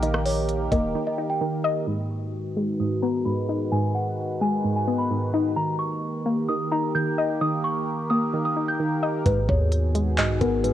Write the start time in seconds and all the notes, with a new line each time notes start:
Already playing: A#1 D#3 A#3 D#4 G4 A#4 D#5
0.03 D#3 D#5, closed hi-hat
0.14 cross-stick
0.26 C#5, open hi-hat
0.49 closed hi-hat
0.72 D#1 A#3 D#5, kick, closed hi-hat
0.95 D#3
1.07 D#5
1.18 D#4
1.30 G5
1.41 D#3
1.64 D#5
1.87 G#2 D#3 G#3 F#4 B4 B5
2.11 C#6
2.56 G#3
2.80 G#2 D#6
3.03 B3 A#5
3.25 G#2 B5
3.49 D#4
3.72 G#2 G#5
3.95 F#5
4.41 G#3 G#5
4.64 G#2
4.76 G#5
4.87 B3
4.98 B5
5.10 G#2
5.34 D#4
5.56 D#3 A#3 G4 A#4 A#5
5.79 C#6
6.26 A#3
6.48 D#3 D#6
6.71 D#4 A#5
6.95 D#3 G6
7.18 D#5
7.41 D#3 D#6
7.64 C#6
8.10 A#3 D#6
8.33 D#3
8.45 D#6
8.57 D#4
8.68 G6
8.80 D#3
9.03 D#5
9.26 G#1 G#2 D#3 B3 F#4 G#4 B4, kick, closed hi-hat
9.49 D#2 C#5, kick
9.72 closed hi-hat
9.95 G#3, closed hi-hat
10.18 B1 G#2 D#5, clap, closed hi-hat
10.41 G#1 B3 A#4, kick, closed hi-hat
10.64 G#2 B4, closed hi-hat